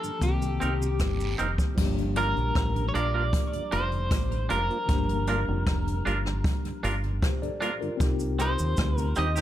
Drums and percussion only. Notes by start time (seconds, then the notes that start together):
0.03 closed hi-hat, cabasa
0.21 kick, closed hi-hat, cabasa
0.42 closed hi-hat, cabasa
0.61 closed hi-hat, cabasa
0.82 cabasa
1.00 kick, cross-stick, closed hi-hat, cabasa, long guiro
1.20 closed hi-hat, cabasa
1.39 closed hi-hat, cabasa
1.58 kick, closed hi-hat, cabasa
1.77 kick, crash
1.98 closed hi-hat
2.16 closed hi-hat
2.37 closed hi-hat
2.55 kick, cross-stick, closed hi-hat
2.76 closed hi-hat
2.95 closed hi-hat
3.33 kick, closed hi-hat
3.53 closed hi-hat
3.72 closed hi-hat
3.92 closed hi-hat
4.11 kick, cross-stick, closed hi-hat
4.31 closed hi-hat
4.50 closed hi-hat
4.70 closed hi-hat
4.88 kick, closed hi-hat
5.09 closed hi-hat
5.27 closed hi-hat
5.66 kick, cross-stick, closed hi-hat
5.87 closed hi-hat
6.06 closed hi-hat
6.26 cross-stick, closed hi-hat
6.44 kick, closed hi-hat
6.65 closed hi-hat
6.84 closed hi-hat
7.03 closed hi-hat
7.22 kick, cross-stick, closed hi-hat
7.43 closed hi-hat
7.62 closed hi-hat
7.82 closed hi-hat
8.00 kick, closed hi-hat, cabasa
8.20 closed hi-hat, cabasa
8.39 closed hi-hat, cabasa
8.59 closed hi-hat, cabasa
8.77 kick, cross-stick, closed hi-hat, cabasa
8.98 closed hi-hat, cabasa
9.16 closed hi-hat, cabasa
9.36 cross-stick, closed hi-hat, cabasa